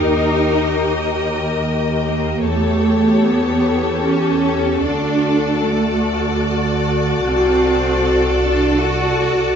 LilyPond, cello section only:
\new Staff \with { instrumentName = "Cello section" } { \time 3/4 \key d \phrygian \tempo 4 = 75 ees'4. r4 bes8 | a4 b4 cis'4 | d'4 a4 r4 | c'4. d'8 fis'4 | }